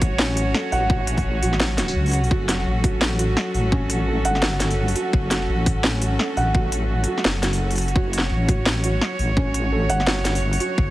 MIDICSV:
0, 0, Header, 1, 5, 480
1, 0, Start_track
1, 0, Tempo, 352941
1, 1221, Time_signature, 4, 2, 24, 8
1, 14829, End_track
2, 0, Start_track
2, 0, Title_t, "Cello section"
2, 0, Program_c, 0, 48
2, 0, Note_on_c, 0, 54, 81
2, 0, Note_on_c, 0, 61, 74
2, 0, Note_on_c, 0, 66, 73
2, 0, Note_on_c, 0, 73, 88
2, 3114, Note_off_c, 0, 73, 0
2, 3137, Note_on_c, 0, 69, 85
2, 10793, Note_off_c, 0, 69, 0
2, 10819, Note_on_c, 0, 73, 88
2, 14829, Note_off_c, 0, 54, 0
2, 14829, Note_off_c, 0, 61, 0
2, 14829, Note_off_c, 0, 66, 0
2, 14829, Note_off_c, 0, 73, 0
2, 14829, End_track
3, 0, Start_track
3, 0, Title_t, "Felt piano"
3, 0, Program_c, 1, 0
3, 0, Control_c, 1, 64, 127
3, 0, Note_on_c, 1, 61, 101
3, 0, Note_on_c, 1, 66, 77
3, 0, Note_on_c, 1, 69, 80
3, 0, Note_on_c, 1, 78, 103
3, 263, Note_off_c, 1, 61, 0
3, 263, Note_on_c, 1, 61, 105
3, 492, Note_off_c, 1, 61, 0
3, 742, Note_off_c, 1, 69, 0
3, 742, Note_on_c, 1, 69, 78
3, 971, Note_off_c, 1, 69, 0
3, 982, Note_off_c, 1, 78, 0
3, 982, Note_on_c, 1, 78, 101
3, 1202, Note_off_c, 1, 78, 0
3, 1222, Note_off_c, 1, 66, 0
3, 1222, Note_on_c, 1, 66, 78
3, 1451, Note_off_c, 1, 66, 0
3, 1941, Note_on_c, 1, 66, 77
3, 2171, Note_off_c, 1, 66, 0
3, 2421, Note_on_c, 1, 66, 76
3, 2574, Note_off_c, 1, 66, 0
3, 3143, Note_on_c, 1, 66, 83
3, 3372, Note_off_c, 1, 66, 0
3, 3860, Note_on_c, 1, 66, 74
3, 4090, Note_off_c, 1, 66, 0
3, 4342, Note_on_c, 1, 66, 74
3, 4495, Note_off_c, 1, 66, 0
3, 5061, Note_on_c, 1, 61, 102
3, 5291, Note_off_c, 1, 61, 0
3, 5541, Note_on_c, 1, 69, 78
3, 5771, Note_off_c, 1, 69, 0
3, 5782, Note_on_c, 1, 78, 102
3, 6001, Note_off_c, 1, 78, 0
3, 6024, Note_on_c, 1, 66, 83
3, 6252, Note_off_c, 1, 66, 0
3, 6741, Note_on_c, 1, 66, 74
3, 6971, Note_off_c, 1, 66, 0
3, 7222, Note_on_c, 1, 66, 79
3, 7375, Note_off_c, 1, 66, 0
3, 7942, Note_on_c, 1, 61, 102
3, 8171, Note_off_c, 1, 61, 0
3, 8424, Note_on_c, 1, 69, 75
3, 8652, Note_off_c, 1, 69, 0
3, 8665, Note_on_c, 1, 78, 98
3, 8883, Note_off_c, 1, 78, 0
3, 8905, Note_on_c, 1, 66, 81
3, 9133, Note_off_c, 1, 66, 0
3, 9623, Note_on_c, 1, 66, 77
3, 9852, Note_off_c, 1, 66, 0
3, 10101, Note_on_c, 1, 66, 78
3, 10254, Note_off_c, 1, 66, 0
3, 10822, Note_on_c, 1, 66, 81
3, 11052, Note_off_c, 1, 66, 0
3, 11541, Note_on_c, 1, 66, 74
3, 11771, Note_off_c, 1, 66, 0
3, 12022, Note_on_c, 1, 66, 75
3, 12175, Note_off_c, 1, 66, 0
3, 12740, Note_on_c, 1, 61, 95
3, 12970, Note_off_c, 1, 61, 0
3, 13222, Note_on_c, 1, 69, 77
3, 13451, Note_off_c, 1, 69, 0
3, 13459, Note_on_c, 1, 78, 101
3, 13680, Note_off_c, 1, 78, 0
3, 13700, Note_on_c, 1, 66, 85
3, 13930, Note_off_c, 1, 66, 0
3, 14419, Note_on_c, 1, 66, 80
3, 14650, Note_off_c, 1, 66, 0
3, 14829, End_track
4, 0, Start_track
4, 0, Title_t, "Wobble bass"
4, 0, Program_c, 2, 39
4, 0, Note_on_c, 2, 33, 99
4, 725, Note_off_c, 2, 33, 0
4, 982, Note_on_c, 2, 33, 99
4, 1925, Note_off_c, 2, 33, 0
4, 1940, Note_on_c, 2, 33, 101
4, 2644, Note_off_c, 2, 33, 0
4, 2660, Note_on_c, 2, 37, 94
4, 3124, Note_off_c, 2, 37, 0
4, 3140, Note_on_c, 2, 30, 102
4, 3605, Note_off_c, 2, 30, 0
4, 3622, Note_on_c, 2, 33, 99
4, 4565, Note_off_c, 2, 33, 0
4, 4819, Note_on_c, 2, 33, 94
4, 5764, Note_off_c, 2, 33, 0
4, 5781, Note_on_c, 2, 31, 101
4, 6725, Note_off_c, 2, 31, 0
4, 6980, Note_on_c, 2, 30, 101
4, 7445, Note_off_c, 2, 30, 0
4, 7461, Note_on_c, 2, 33, 98
4, 8405, Note_off_c, 2, 33, 0
4, 8660, Note_on_c, 2, 33, 98
4, 9604, Note_off_c, 2, 33, 0
4, 9861, Note_on_c, 2, 30, 97
4, 10805, Note_off_c, 2, 30, 0
4, 10821, Note_on_c, 2, 30, 104
4, 11285, Note_off_c, 2, 30, 0
4, 11300, Note_on_c, 2, 33, 104
4, 12244, Note_off_c, 2, 33, 0
4, 12499, Note_on_c, 2, 33, 96
4, 13444, Note_off_c, 2, 33, 0
4, 13459, Note_on_c, 2, 31, 101
4, 14404, Note_off_c, 2, 31, 0
4, 14659, Note_on_c, 2, 30, 102
4, 14829, Note_off_c, 2, 30, 0
4, 14829, End_track
5, 0, Start_track
5, 0, Title_t, "Drums"
5, 22, Note_on_c, 9, 36, 105
5, 22, Note_on_c, 9, 42, 62
5, 158, Note_off_c, 9, 36, 0
5, 158, Note_off_c, 9, 42, 0
5, 260, Note_on_c, 9, 38, 117
5, 396, Note_off_c, 9, 38, 0
5, 500, Note_on_c, 9, 42, 84
5, 636, Note_off_c, 9, 42, 0
5, 740, Note_on_c, 9, 40, 64
5, 876, Note_off_c, 9, 40, 0
5, 981, Note_on_c, 9, 46, 41
5, 1117, Note_off_c, 9, 46, 0
5, 1221, Note_on_c, 9, 36, 118
5, 1357, Note_off_c, 9, 36, 0
5, 1460, Note_on_c, 9, 42, 79
5, 1596, Note_off_c, 9, 42, 0
5, 1597, Note_on_c, 9, 46, 39
5, 1601, Note_on_c, 9, 36, 59
5, 1733, Note_off_c, 9, 46, 0
5, 1737, Note_off_c, 9, 36, 0
5, 1939, Note_on_c, 9, 42, 62
5, 2075, Note_off_c, 9, 42, 0
5, 2078, Note_on_c, 9, 40, 40
5, 2179, Note_on_c, 9, 38, 116
5, 2214, Note_off_c, 9, 40, 0
5, 2315, Note_off_c, 9, 38, 0
5, 2420, Note_on_c, 9, 38, 61
5, 2420, Note_on_c, 9, 40, 40
5, 2420, Note_on_c, 9, 42, 86
5, 2556, Note_off_c, 9, 38, 0
5, 2556, Note_off_c, 9, 40, 0
5, 2556, Note_off_c, 9, 42, 0
5, 2560, Note_on_c, 9, 46, 64
5, 2696, Note_off_c, 9, 46, 0
5, 2801, Note_on_c, 9, 46, 31
5, 2826, Note_off_c, 9, 46, 0
5, 2826, Note_on_c, 9, 46, 38
5, 2850, Note_off_c, 9, 46, 0
5, 2850, Note_on_c, 9, 46, 48
5, 2877, Note_off_c, 9, 46, 0
5, 2877, Note_on_c, 9, 46, 58
5, 2902, Note_on_c, 9, 42, 69
5, 3013, Note_off_c, 9, 46, 0
5, 3038, Note_off_c, 9, 42, 0
5, 3042, Note_on_c, 9, 46, 37
5, 3141, Note_on_c, 9, 36, 117
5, 3178, Note_off_c, 9, 46, 0
5, 3277, Note_off_c, 9, 36, 0
5, 3382, Note_on_c, 9, 38, 62
5, 3382, Note_on_c, 9, 42, 83
5, 3518, Note_off_c, 9, 38, 0
5, 3518, Note_off_c, 9, 42, 0
5, 3861, Note_on_c, 9, 36, 111
5, 3861, Note_on_c, 9, 42, 65
5, 3997, Note_off_c, 9, 36, 0
5, 3997, Note_off_c, 9, 42, 0
5, 4100, Note_on_c, 9, 38, 121
5, 4236, Note_off_c, 9, 38, 0
5, 4341, Note_on_c, 9, 42, 86
5, 4477, Note_off_c, 9, 42, 0
5, 4579, Note_on_c, 9, 40, 68
5, 4715, Note_off_c, 9, 40, 0
5, 4820, Note_on_c, 9, 46, 37
5, 4956, Note_off_c, 9, 46, 0
5, 5060, Note_on_c, 9, 36, 121
5, 5196, Note_off_c, 9, 36, 0
5, 5300, Note_on_c, 9, 42, 84
5, 5436, Note_off_c, 9, 42, 0
5, 5778, Note_on_c, 9, 42, 66
5, 5914, Note_off_c, 9, 42, 0
5, 5917, Note_on_c, 9, 40, 37
5, 6017, Note_on_c, 9, 38, 121
5, 6053, Note_off_c, 9, 40, 0
5, 6153, Note_off_c, 9, 38, 0
5, 6258, Note_on_c, 9, 38, 65
5, 6258, Note_on_c, 9, 42, 88
5, 6394, Note_off_c, 9, 38, 0
5, 6394, Note_off_c, 9, 42, 0
5, 6399, Note_on_c, 9, 46, 60
5, 6535, Note_off_c, 9, 46, 0
5, 6640, Note_on_c, 9, 46, 64
5, 6740, Note_on_c, 9, 42, 69
5, 6776, Note_off_c, 9, 46, 0
5, 6876, Note_off_c, 9, 42, 0
5, 6981, Note_on_c, 9, 36, 127
5, 7117, Note_off_c, 9, 36, 0
5, 7220, Note_on_c, 9, 38, 63
5, 7220, Note_on_c, 9, 42, 81
5, 7356, Note_off_c, 9, 38, 0
5, 7356, Note_off_c, 9, 42, 0
5, 7702, Note_on_c, 9, 36, 111
5, 7702, Note_on_c, 9, 42, 64
5, 7838, Note_off_c, 9, 36, 0
5, 7838, Note_off_c, 9, 42, 0
5, 7941, Note_on_c, 9, 38, 127
5, 8077, Note_off_c, 9, 38, 0
5, 8182, Note_on_c, 9, 42, 87
5, 8318, Note_off_c, 9, 42, 0
5, 8422, Note_on_c, 9, 40, 61
5, 8558, Note_off_c, 9, 40, 0
5, 8662, Note_on_c, 9, 46, 37
5, 8798, Note_off_c, 9, 46, 0
5, 8903, Note_on_c, 9, 36, 120
5, 9039, Note_off_c, 9, 36, 0
5, 9142, Note_on_c, 9, 42, 80
5, 9278, Note_off_c, 9, 42, 0
5, 9571, Note_on_c, 9, 42, 64
5, 9707, Note_off_c, 9, 42, 0
5, 9759, Note_on_c, 9, 40, 36
5, 9860, Note_on_c, 9, 38, 125
5, 9895, Note_off_c, 9, 40, 0
5, 9996, Note_off_c, 9, 38, 0
5, 10101, Note_on_c, 9, 38, 68
5, 10101, Note_on_c, 9, 42, 81
5, 10237, Note_off_c, 9, 38, 0
5, 10237, Note_off_c, 9, 42, 0
5, 10240, Note_on_c, 9, 46, 62
5, 10376, Note_off_c, 9, 46, 0
5, 10480, Note_on_c, 9, 46, 61
5, 10547, Note_off_c, 9, 46, 0
5, 10547, Note_on_c, 9, 46, 48
5, 10580, Note_on_c, 9, 42, 70
5, 10626, Note_off_c, 9, 46, 0
5, 10626, Note_on_c, 9, 46, 42
5, 10716, Note_off_c, 9, 42, 0
5, 10718, Note_on_c, 9, 42, 35
5, 10762, Note_off_c, 9, 46, 0
5, 10821, Note_on_c, 9, 36, 116
5, 10854, Note_off_c, 9, 42, 0
5, 10957, Note_off_c, 9, 36, 0
5, 11060, Note_on_c, 9, 42, 74
5, 11130, Note_on_c, 9, 38, 61
5, 11196, Note_off_c, 9, 42, 0
5, 11266, Note_off_c, 9, 38, 0
5, 11540, Note_on_c, 9, 42, 61
5, 11541, Note_on_c, 9, 36, 108
5, 11676, Note_off_c, 9, 42, 0
5, 11677, Note_off_c, 9, 36, 0
5, 11780, Note_on_c, 9, 38, 116
5, 11916, Note_off_c, 9, 38, 0
5, 12019, Note_on_c, 9, 42, 79
5, 12155, Note_off_c, 9, 42, 0
5, 12260, Note_on_c, 9, 40, 59
5, 12396, Note_off_c, 9, 40, 0
5, 12499, Note_on_c, 9, 46, 39
5, 12635, Note_off_c, 9, 46, 0
5, 12740, Note_on_c, 9, 36, 114
5, 12876, Note_off_c, 9, 36, 0
5, 12979, Note_on_c, 9, 42, 76
5, 13115, Note_off_c, 9, 42, 0
5, 13458, Note_on_c, 9, 42, 59
5, 13594, Note_off_c, 9, 42, 0
5, 13598, Note_on_c, 9, 40, 37
5, 13698, Note_on_c, 9, 38, 118
5, 13734, Note_off_c, 9, 40, 0
5, 13834, Note_off_c, 9, 38, 0
5, 13939, Note_on_c, 9, 38, 65
5, 13939, Note_on_c, 9, 42, 82
5, 14075, Note_off_c, 9, 38, 0
5, 14075, Note_off_c, 9, 42, 0
5, 14079, Note_on_c, 9, 46, 66
5, 14215, Note_off_c, 9, 46, 0
5, 14318, Note_on_c, 9, 46, 69
5, 14420, Note_on_c, 9, 42, 63
5, 14454, Note_off_c, 9, 46, 0
5, 14556, Note_off_c, 9, 42, 0
5, 14660, Note_on_c, 9, 36, 110
5, 14796, Note_off_c, 9, 36, 0
5, 14829, End_track
0, 0, End_of_file